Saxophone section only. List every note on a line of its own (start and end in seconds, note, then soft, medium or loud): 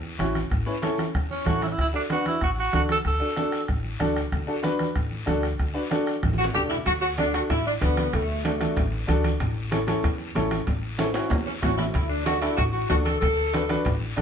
6.38 6.46 F#4 medium
6.54 6.61 G4 medium
6.70 6.77 E4 medium
6.86 6.93 F#4 loud
7.02 7.09 F#4 medium
7.18 7.33 D4 medium
7.34 7.41 F#4 medium
7.50 7.65 E4 medium
7.67 7.73 D4 medium
7.82 8.12 B3 medium
8.14 8.45 A3 medium
8.46 8.90 A3 medium
11.46 11.53 C#4 medium
11.63 11.77 F#4 medium
11.78 11.85 E4 medium
11.94 12.09 E4 medium
12.09 12.25 D4 medium
12.26 12.41 F#4 medium
12.41 12.57 E4 medium
12.57 12.64 F#4 medium
12.73 12.88 F#4 medium
12.89 12.96 F#4 medium
13.05 13.19 A4 medium
13.21 13.81 A4 medium